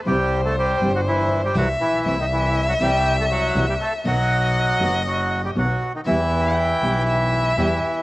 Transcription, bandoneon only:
X:1
M:4/4
L:1/16
Q:1/4=120
K:Em
V:1 name="Bandoneon"
[G,G]3 [A,A] [G,G]3 [F,F] [E,E]3 [G,G] [F,F]2 [E,E]2- | [E,E] [^D,^D] [E,E]3 [F,F] [G,G]3 [A,A] [F,F]3 [G,G] [A,A]2 | [F,F]8 [F,F]3 [G,G] [F,F]3 [^D,^D] | [E,E]12 [E,E]4 |]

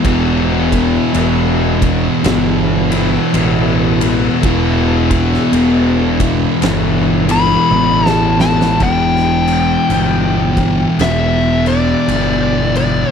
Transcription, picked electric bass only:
X:1
M:4/4
L:1/8
Q:"Swing" 1/4=55
K:Em
V:1 name="Picked electric bass" clef=bass
E,,,2 E,,,2 G,,,2 A,,,2 | E,,,2 E,,,2 G,,,2 A,,,2 | E,,,2 G,,,2 E,,,2 G,,,2 |]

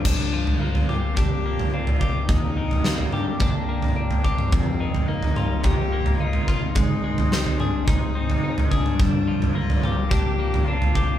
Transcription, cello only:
X:1
M:4/4
L:1/8
Q:1/4=107
K:Gm
V:1 name="Cello"
D2 F2 G2 F2 | E3 D B,3 C- | C2 E2 G2 F2 | E3 D E3 D- |
D2 F2 G2 F2 |]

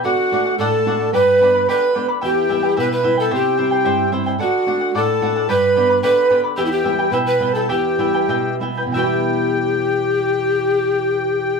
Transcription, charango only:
X:1
M:2/4
L:1/16
Q:1/4=110
K:Em
V:1 name="Charango"
[Adf]2 [Adf] [df] [Adf]2 [Adf] [df] | [GBdgb]2 [Bdgb] [Bdb] [GBdgb]2 [Bdgb] [Bdb] | [EGBeg]2 [EBeg] [EBg] [EGBeg]2 [EBeg] [EBg] | [EGceg]2 [Eceg] [Ecg] [EGceg]2 [Eceg] [Ecg] |
[Adf]2 [Adf] [df] [Adf]2 [Adf] [df] | [GBdgb]2 [Bdgb] [Bdb] [GBdgb]2 [Bdgb] [Bdb] | [EGBeg]2 [EBeg] [EBg] [EGBeg]2 [EBeg] [EBg] | [EGBeg]2 [EBeg] [EBg] [EGBeg]2 [EBeg] [EBg] |
[EGBeg]8- | [EGBeg]8 |]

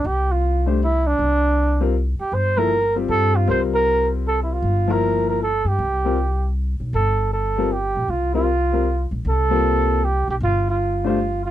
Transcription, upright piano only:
X:1
M:3/4
L:1/8
Q:"Swing" 1/4=156
K:Cmix
V:1 name="Upright piano"
z3 [A,DGc] z2 | z3 [G,CFB] z2 | z [F,B,EA] z [G,CFG]3 | [G,CFB]4- [G,CFB] z |
z [F,B,EB]3 z2 | z [G,CFB] z4 | z3 [G,CFB] z2 | z [G,CFB] z [G,CFB] z2 |
z [G,B,CF]3 z2 | z3 [A,DGc] z2 |]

